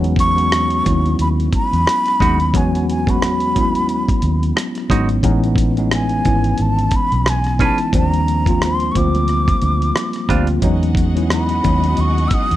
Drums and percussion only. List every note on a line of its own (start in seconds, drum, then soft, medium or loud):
0.04 closed hi-hat soft
0.16 kick medium
0.16 closed hi-hat medium
0.38 closed hi-hat soft
0.52 cross-stick loud
0.52 closed hi-hat medium
0.70 closed hi-hat soft
0.86 kick medium
0.86 closed hi-hat medium
1.06 closed hi-hat soft
1.19 closed hi-hat medium
1.40 closed hi-hat soft
1.53 kick medium
1.53 closed hi-hat soft
1.73 closed hi-hat soft
1.87 cross-stick loud
1.87 closed hi-hat medium
2.06 cross-stick soft
2.06 closed hi-hat soft
2.20 kick medium
2.20 closed hi-hat medium
2.40 closed hi-hat soft
2.54 kick medium
2.54 closed hi-hat medium
2.75 closed hi-hat soft
2.90 closed hi-hat medium
3.07 kick medium
3.07 closed hi-hat soft
3.22 cross-stick loud
3.22 closed hi-hat medium
3.40 closed hi-hat soft
3.56 kick medium
3.56 closed hi-hat medium
3.75 closed hi-hat soft
3.89 closed hi-hat medium
4.09 kick medium
4.09 closed hi-hat soft
4.22 closed hi-hat medium
4.43 closed hi-hat soft
4.57 cross-stick loud
4.57 closed hi-hat medium
4.75 cross-stick soft
4.75 closed hi-hat soft
4.90 kick medium
4.90 closed hi-hat medium
5.09 closed hi-hat soft
5.23 kick loud
5.23 closed hi-hat medium
5.44 closed hi-hat soft
5.56 kick medium
5.56 closed hi-hat medium
5.77 closed hi-hat soft
5.91 cross-stick loud
5.91 closed hi-hat medium
6.09 closed hi-hat soft
6.25 kick medium
6.25 closed hi-hat medium
6.44 closed hi-hat soft
6.58 closed hi-hat medium
6.79 closed hi-hat soft
6.91 kick medium
6.91 closed hi-hat medium
7.12 closed hi-hat soft
7.26 cross-stick loud
7.26 closed hi-hat medium
7.44 cross-stick soft
7.44 closed hi-hat soft
7.59 kick medium
7.59 closed hi-hat medium
7.78 closed hi-hat soft
7.93 kick loud
7.93 closed hi-hat medium
8.14 closed hi-hat soft
8.28 closed hi-hat medium
8.46 kick medium
8.46 closed hi-hat soft
8.62 cross-stick loud
8.62 closed hi-hat medium
8.80 closed hi-hat soft
8.95 kick medium
8.95 closed hi-hat medium
9.15 closed hi-hat soft
9.28 cross-stick soft
9.28 closed hi-hat medium
9.48 kick medium
9.48 closed hi-hat soft
9.62 closed hi-hat medium
9.82 closed hi-hat soft
9.96 cross-stick loud
9.96 closed hi-hat medium
10.13 cross-stick soft
10.13 closed hi-hat soft
10.29 kick medium
10.29 closed hi-hat medium
10.47 closed hi-hat soft
10.62 kick medium
10.62 closed hi-hat medium
10.83 closed hi-hat soft
10.95 kick medium
10.95 closed hi-hat medium
11.17 closed hi-hat medium
11.30 cross-stick loud
11.30 closed hi-hat medium
11.49 closed hi-hat soft
11.64 kick medium
11.64 closed hi-hat medium
11.84 closed hi-hat soft
11.97 closed hi-hat medium
12.18 closed hi-hat soft
12.31 kick medium
12.31 closed hi-hat medium
12.51 closed hi-hat soft